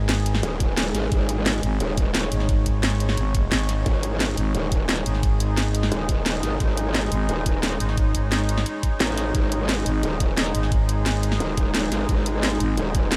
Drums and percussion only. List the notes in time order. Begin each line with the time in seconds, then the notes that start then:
0.09 snare, closed hi-hat
0.26 closed hi-hat
0.35 snare
0.43 closed hi-hat
0.60 kick, closed hi-hat
0.77 snare, closed hi-hat
0.95 snare, closed hi-hat
1.12 kick, closed hi-hat
1.29 closed hi-hat
1.46 snare, closed hi-hat
1.63 closed hi-hat
1.80 closed hi-hat
1.97 kick, closed hi-hat
2.15 snare, closed hi-hat
2.23 snare
2.32 closed hi-hat
2.40 snare
2.49 kick, closed hi-hat
2.66 kick, closed hi-hat
2.83 snare, closed hi-hat
3.00 closed hi-hat
3.09 snare
3.17 closed hi-hat
3.35 kick, closed hi-hat
3.52 snare, closed hi-hat
3.69 snare, closed hi-hat
3.86 kick, closed hi-hat
4.03 closed hi-hat
4.20 snare, closed hi-hat
4.37 closed hi-hat
4.55 closed hi-hat
4.72 kick, closed hi-hat
4.89 snare, closed hi-hat
4.97 snare
5.06 closed hi-hat
5.15 snare
5.23 kick, closed hi-hat
5.40 closed hi-hat
5.57 snare, closed hi-hat
5.75 closed hi-hat
5.83 snare
5.92 closed hi-hat
6.09 kick, closed hi-hat
6.26 snare, closed hi-hat
6.43 snare, closed hi-hat
6.60 kick, closed hi-hat
6.77 closed hi-hat
6.95 snare, closed hi-hat
7.12 closed hi-hat
7.29 closed hi-hat
7.46 kick, closed hi-hat
7.63 snare, closed hi-hat
7.72 snare
7.80 closed hi-hat
7.89 snare
7.97 kick, closed hi-hat
8.15 kick, closed hi-hat
8.32 snare, closed hi-hat
8.49 closed hi-hat
8.58 snare
8.66 closed hi-hat
8.83 kick, closed hi-hat
9.00 snare, closed hi-hat
9.18 snare, closed hi-hat
9.35 kick, closed hi-hat
9.52 closed hi-hat
9.69 snare, closed hi-hat
9.86 closed hi-hat
10.03 closed hi-hat
10.20 kick, closed hi-hat
10.37 snare, closed hi-hat
10.46 snare
10.55 closed hi-hat
10.63 snare
10.72 kick, closed hi-hat
10.89 closed hi-hat
11.06 snare, closed hi-hat
11.23 closed hi-hat
11.32 snare
11.40 closed hi-hat
11.57 kick, closed hi-hat
11.75 snare, closed hi-hat
11.92 snare, closed hi-hat
12.09 kick, closed hi-hat
12.26 closed hi-hat
12.43 snare, closed hi-hat
12.60 closed hi-hat
12.77 closed hi-hat
12.95 kick, closed hi-hat
13.12 snare, closed hi-hat